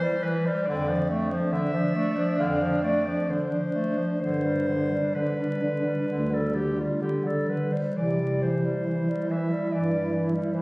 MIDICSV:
0, 0, Header, 1, 5, 480
1, 0, Start_track
1, 0, Key_signature, 0, "major"
1, 0, Tempo, 853485
1, 372, Time_signature, 4, 2, 24, 8
1, 852, Tempo, 884956
1, 1812, Tempo, 930233
1, 4692, Tempo, 834492
1, 5700, End_track
2, 0, Start_track
2, 0, Title_t, "Clarinet"
2, 0, Program_c, 0, 71
2, 0, Note_on_c, 0, 72, 119
2, 128, Note_on_c, 0, 71, 89
2, 136, Note_off_c, 0, 72, 0
2, 255, Note_on_c, 0, 72, 84
2, 264, Note_off_c, 0, 71, 0
2, 367, Note_on_c, 0, 74, 95
2, 376, Note_off_c, 0, 72, 0
2, 699, Note_off_c, 0, 74, 0
2, 852, Note_on_c, 0, 76, 92
2, 1331, Note_on_c, 0, 77, 85
2, 1340, Note_off_c, 0, 76, 0
2, 1567, Note_off_c, 0, 77, 0
2, 1570, Note_on_c, 0, 74, 80
2, 1817, Note_on_c, 0, 72, 78
2, 1825, Note_off_c, 0, 74, 0
2, 2286, Note_off_c, 0, 72, 0
2, 2290, Note_on_c, 0, 72, 81
2, 2777, Note_on_c, 0, 71, 60
2, 2784, Note_off_c, 0, 72, 0
2, 3386, Note_on_c, 0, 69, 58
2, 3394, Note_off_c, 0, 71, 0
2, 3496, Note_on_c, 0, 67, 59
2, 3503, Note_off_c, 0, 69, 0
2, 3624, Note_on_c, 0, 65, 54
2, 3632, Note_off_c, 0, 67, 0
2, 3735, Note_off_c, 0, 65, 0
2, 3739, Note_on_c, 0, 67, 61
2, 3870, Note_on_c, 0, 69, 58
2, 3877, Note_off_c, 0, 67, 0
2, 3984, Note_on_c, 0, 71, 55
2, 3992, Note_off_c, 0, 69, 0
2, 4105, Note_on_c, 0, 72, 60
2, 4113, Note_off_c, 0, 71, 0
2, 4227, Note_on_c, 0, 74, 75
2, 4235, Note_off_c, 0, 72, 0
2, 4463, Note_on_c, 0, 72, 63
2, 4470, Note_off_c, 0, 74, 0
2, 4947, Note_on_c, 0, 76, 71
2, 4956, Note_off_c, 0, 72, 0
2, 5184, Note_on_c, 0, 74, 70
2, 5193, Note_off_c, 0, 76, 0
2, 5507, Note_off_c, 0, 74, 0
2, 5656, Note_on_c, 0, 72, 73
2, 5700, Note_off_c, 0, 72, 0
2, 5700, End_track
3, 0, Start_track
3, 0, Title_t, "Alto saxophone"
3, 0, Program_c, 1, 65
3, 0, Note_on_c, 1, 64, 72
3, 200, Note_off_c, 1, 64, 0
3, 370, Note_on_c, 1, 62, 69
3, 2268, Note_off_c, 1, 62, 0
3, 2285, Note_on_c, 1, 62, 49
3, 4024, Note_off_c, 1, 62, 0
3, 4225, Note_on_c, 1, 64, 49
3, 5700, Note_off_c, 1, 64, 0
3, 5700, End_track
4, 0, Start_track
4, 0, Title_t, "Clarinet"
4, 0, Program_c, 2, 71
4, 16, Note_on_c, 2, 55, 60
4, 136, Note_on_c, 2, 52, 65
4, 144, Note_off_c, 2, 55, 0
4, 258, Note_on_c, 2, 55, 63
4, 267, Note_off_c, 2, 52, 0
4, 375, Note_off_c, 2, 55, 0
4, 380, Note_on_c, 2, 50, 67
4, 499, Note_on_c, 2, 53, 57
4, 508, Note_off_c, 2, 50, 0
4, 619, Note_on_c, 2, 57, 54
4, 627, Note_off_c, 2, 53, 0
4, 739, Note_on_c, 2, 53, 60
4, 748, Note_off_c, 2, 57, 0
4, 857, Note_on_c, 2, 50, 60
4, 865, Note_off_c, 2, 53, 0
4, 971, Note_on_c, 2, 53, 56
4, 979, Note_off_c, 2, 50, 0
4, 1088, Note_on_c, 2, 57, 57
4, 1096, Note_off_c, 2, 53, 0
4, 1208, Note_on_c, 2, 53, 55
4, 1216, Note_off_c, 2, 57, 0
4, 1322, Note_off_c, 2, 53, 0
4, 1325, Note_on_c, 2, 50, 61
4, 1443, Note_on_c, 2, 53, 54
4, 1451, Note_off_c, 2, 50, 0
4, 1567, Note_on_c, 2, 57, 54
4, 1575, Note_off_c, 2, 53, 0
4, 1691, Note_on_c, 2, 53, 51
4, 1699, Note_off_c, 2, 57, 0
4, 1815, Note_on_c, 2, 50, 49
4, 1823, Note_off_c, 2, 53, 0
4, 1930, Note_on_c, 2, 53, 46
4, 1938, Note_off_c, 2, 50, 0
4, 2054, Note_on_c, 2, 57, 47
4, 2062, Note_off_c, 2, 53, 0
4, 2169, Note_on_c, 2, 53, 47
4, 2176, Note_off_c, 2, 57, 0
4, 2289, Note_off_c, 2, 53, 0
4, 2291, Note_on_c, 2, 50, 49
4, 2409, Note_on_c, 2, 55, 43
4, 2417, Note_off_c, 2, 50, 0
4, 2531, Note_on_c, 2, 50, 40
4, 2539, Note_off_c, 2, 55, 0
4, 2651, Note_on_c, 2, 55, 44
4, 2658, Note_off_c, 2, 50, 0
4, 2773, Note_on_c, 2, 50, 44
4, 2781, Note_off_c, 2, 55, 0
4, 2892, Note_on_c, 2, 55, 40
4, 2900, Note_off_c, 2, 50, 0
4, 3017, Note_on_c, 2, 50, 42
4, 3025, Note_off_c, 2, 55, 0
4, 3137, Note_on_c, 2, 55, 41
4, 3145, Note_off_c, 2, 50, 0
4, 3252, Note_off_c, 2, 55, 0
4, 3255, Note_on_c, 2, 50, 44
4, 3375, Note_on_c, 2, 55, 40
4, 3383, Note_off_c, 2, 50, 0
4, 3493, Note_on_c, 2, 50, 41
4, 3501, Note_off_c, 2, 55, 0
4, 3614, Note_on_c, 2, 55, 40
4, 3622, Note_off_c, 2, 50, 0
4, 3735, Note_on_c, 2, 50, 41
4, 3743, Note_off_c, 2, 55, 0
4, 3853, Note_on_c, 2, 55, 42
4, 3861, Note_off_c, 2, 50, 0
4, 3975, Note_on_c, 2, 50, 42
4, 3983, Note_off_c, 2, 55, 0
4, 4100, Note_on_c, 2, 55, 40
4, 4107, Note_off_c, 2, 50, 0
4, 4217, Note_off_c, 2, 55, 0
4, 4220, Note_on_c, 2, 52, 44
4, 4337, Note_on_c, 2, 55, 40
4, 4345, Note_off_c, 2, 52, 0
4, 4463, Note_on_c, 2, 52, 43
4, 4471, Note_off_c, 2, 55, 0
4, 4577, Note_on_c, 2, 55, 43
4, 4585, Note_off_c, 2, 52, 0
4, 4690, Note_on_c, 2, 52, 43
4, 4699, Note_off_c, 2, 55, 0
4, 4817, Note_on_c, 2, 55, 43
4, 4825, Note_off_c, 2, 52, 0
4, 4937, Note_on_c, 2, 52, 42
4, 4946, Note_off_c, 2, 55, 0
4, 5059, Note_on_c, 2, 55, 43
4, 5067, Note_off_c, 2, 52, 0
4, 5174, Note_off_c, 2, 55, 0
4, 5177, Note_on_c, 2, 52, 49
4, 5295, Note_on_c, 2, 55, 42
4, 5304, Note_off_c, 2, 52, 0
4, 5416, Note_on_c, 2, 52, 46
4, 5425, Note_off_c, 2, 55, 0
4, 5539, Note_on_c, 2, 55, 42
4, 5548, Note_off_c, 2, 52, 0
4, 5655, Note_on_c, 2, 52, 43
4, 5664, Note_off_c, 2, 55, 0
4, 5700, Note_off_c, 2, 52, 0
4, 5700, End_track
5, 0, Start_track
5, 0, Title_t, "Bass clarinet"
5, 0, Program_c, 3, 71
5, 371, Note_on_c, 3, 41, 82
5, 772, Note_off_c, 3, 41, 0
5, 1323, Note_on_c, 3, 41, 69
5, 1730, Note_off_c, 3, 41, 0
5, 2291, Note_on_c, 3, 43, 55
5, 2693, Note_off_c, 3, 43, 0
5, 3260, Note_on_c, 3, 38, 52
5, 3656, Note_off_c, 3, 38, 0
5, 4220, Note_on_c, 3, 48, 55
5, 4617, Note_off_c, 3, 48, 0
5, 5183, Note_on_c, 3, 43, 52
5, 5576, Note_off_c, 3, 43, 0
5, 5700, End_track
0, 0, End_of_file